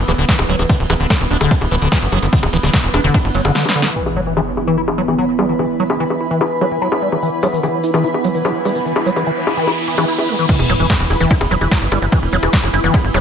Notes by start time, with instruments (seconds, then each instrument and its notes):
Already playing: synth drone E3 B3
0.08 analog synth bass D1, acid bass E3, open hi-hat, high bongo, shaker
0.18 analog synth bass D1, acid bass D3, closed hi-hat, shaker
0.28 acid bass E3, kick, snare, closed hi-hat, ride, shaker
0.39 analog synth bass D1, high bongo
0.49 analog synth bass D1, acid bass F#3, open hi-hat, shaker
0.59 analog synth bass D1, acid bass D3, closed hi-hat, high bongo, shaker
0.69 acid bass D3, kick, closed hi-hat, ride, shaker
0.80 analog synth bass D1
0.90 analog synth bass D1, acid bass E3, open hi-hat, high bongo, shaker
1.00 analog synth bass D1, acid bass D3, closed hi-hat, shaker
1.10 acid bass D3, kick, snare, closed hi-hat, ride, high bongo, shaker
1.20 analog synth bass D1
1.31 analog synth bass D1, acid bass D4, open hi-hat, shaker
1.41 analog synth bass D1, acid bass D3, closed hi-hat, high bongo, shaker
1.51 acid bass D4, kick, closed hi-hat, ride, shaker
1.61 analog synth bass D1, high bongo
1.71 analog synth bass D1, acid bass E3, open hi-hat, shaker
1.81 analog synth bass D1, acid bass D3, closed hi-hat, shaker
1.92 acid bass E3, kick, snare, closed hi-hat, ride, high bongo, shaker
2.02 analog synth bass F#1
2.12 analog synth bass F#1, acid bass F#3, open hi-hat, high bongo, shaker
2.22 analog synth bass F#1, acid bass D3, closed hi-hat, shaker
2.33 acid bass D3, kick, closed hi-hat, ride, shaker
2.43 analog synth bass D1, high bongo
2.53 analog synth bass D1, acid bass E3, open hi-hat, shaker
2.63 analog synth bass D1, acid bass D3, snare, closed hi-hat, high bongo, shaker
2.74 acid bass D3, kick, snare, closed hi-hat, ride, shaker
2.84 analog synth bass E1
2.94 analog synth bass E1, acid bass D4, open hi-hat, high bongo, shaker
3.04 analog synth bass E1, acid bass D3, closed hi-hat, shaker
3.14 acid bass D4, kick, closed hi-hat, ride, high bongo, shaker
3.25 analog synth bass F#1
3.35 analog synth bass F#1, acid bass F#3, open hi-hat, shaker
3.45 analog synth bass F#1, acid bass D3, closed hi-hat, high bongo, shaker
3.55 acid bass D3, snare, closed hi-hat, ride, shaker
3.65 snare, high bongo
3.75 acid bass D3, open hi-hat, shaker
3.82 acid bass D3, snare, closed hi-hat, shaker
3.96 acid bass E3, synth drone E3 B3, ambient pad E4, impact
4.06 high bongo
4.13 acid bass F#3, ambient pad B4, closed hi-hat
4.27 acid bass E3, closed hi-hat
4.33 acid bass E3, ambient pad B5, closed hi-hat, high bongo
4.57 acid bass E4, closed hi-hat, high bongo
4.67 acid bass E3, closed hi-hat
4.78 acid bass E4, closed hi-hat
4.88 high bongo
4.98 acid bass F#3, closed hi-hat
5.08 acid bass E3, closed hi-hat, high bongo
5.18 acid bass F#3, closed hi-hat
5.39 acid bass G3, closed hi-hat, high bongo
5.49 acid bass E3, closed hi-hat
5.59 acid bass E3, closed hi-hat, high bongo
5.80 acid bass F#3, closed hi-hat
5.90 acid bass E3, closed hi-hat, high bongo
6.00 acid bass E3, closed hi-hat
6.10 high bongo
6.20 acid bass E4, closed hi-hat
6.31 acid bass E3, closed hi-hat
6.41 acid bass E4, closed hi-hat, high bongo
6.61 acid bass F#3, closed hi-hat, high bongo
6.71 acid bass E3, closed hi-hat
6.82 acid bass F#3, closed hi-hat
6.92 high bongo
7.02 acid bass G3, closed hi-hat
7.12 acid bass E3, closed hi-hat, high bongo
7.23 acid bass E3, closed hi-hat, riser, shaker
7.43 acid bass F#3, closed hi-hat, high bongo, shaker
7.53 acid bass E3, closed hi-hat, shaker
7.63 acid bass E3, closed hi-hat, high bongo, shaker
7.84 acid bass E4, closed hi-hat, shaker
7.93 acid bass E3, closed hi-hat, high bongo, shaker
8.04 acid bass E4, closed hi-hat, shaker
8.14 high bongo
8.24 acid bass F#3, closed hi-hat, shaker
8.35 acid bass E3, closed hi-hat, shaker
8.44 acid bass F#3, closed hi-hat, high bongo, shaker
8.65 acid bass G3, closed hi-hat, high bongo, shaker
8.75 acid bass E3, closed hi-hat, shaker
8.86 acid bass E3, closed hi-hat, shaker
8.96 high bongo
9.06 acid bass F#3, closed hi-hat, shaker
9.16 acid bass E3, closed hi-hat, high bongo, shaker
9.27 acid bass E3, closed hi-hat, shaker
9.47 acid bass E4, closed hi-hat, high bongo, shaker
9.57 acid bass E3, closed hi-hat, shaker
9.67 acid bass E4, closed hi-hat, high bongo, shaker
9.88 acid bass E3, closed hi-hat, shaker
9.98 acid bass E3, closed hi-hat, high bongo, shaker
10.08 acid bass E4, closed hi-hat, shaker
10.18 high bongo
10.28 acid bass G3, closed hi-hat, shaker
10.39 acid bass E3, closed hi-hat, shaker
10.49 synth drone E3 B3, acid bass E3, kick, closed hi-hat, crash, ride, sub drop, shaker
10.59 analog synth bass E1, high bongo
10.69 analog synth bass E1, acid bass F#3, open hi-hat, shaker
10.79 analog synth bass E1, acid bass E3, closed hi-hat, shaker
10.89 acid bass E3, kick, snare, closed hi-hat, high bongo, shaker
11.00 analog synth bass E1
11.10 analog synth bass E1, acid bass E4, open hi-hat, high bongo, shaker
11.20 analog synth bass E1, acid bass E3, closed hi-hat, shaker
11.31 acid bass E4, kick, closed hi-hat, ride, shaker
11.41 analog synth bass E1, high bongo
11.51 analog synth bass E1, acid bass F#3, open hi-hat, shaker
11.61 analog synth bass E1, acid bass E3, closed hi-hat, high bongo, shaker
11.71 acid bass F#3, kick, snare, closed hi-hat, ride, shaker
11.82 analog synth bass G1
11.92 analog synth bass G1, acid bass G3, open hi-hat, high bongo, shaker
12.02 analog synth bass G1, acid bass E3, closed hi-hat, shaker
12.12 acid bass E3, kick, closed hi-hat, ride, high bongo, shaker
12.22 analog synth bass E1
12.32 analog synth bass E1, acid bass F#3, open hi-hat, shaker
12.43 analog synth bass E1, acid bass E3, closed hi-hat, high bongo, shaker
12.53 acid bass E3, kick, snare, closed hi-hat, ride, shaker
12.63 analog synth bass F#1, high bongo
12.73 analog synth bass F#1, acid bass E4, open hi-hat, shaker
12.83 analog synth bass F#1, acid bass E3, closed hi-hat, shaker
12.94 acid bass E4, kick, closed hi-hat, ride, high bongo, shaker
13.04 analog synth bass G1
13.14 analog synth bass E1, acid bass F#3, open hi-hat, high bongo, zap, shaker